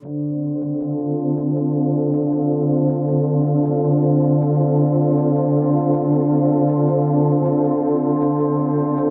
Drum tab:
SH |x--xx--xx--xx--x|x--xx--xx--xx--x|x--xx--xx--xx--x|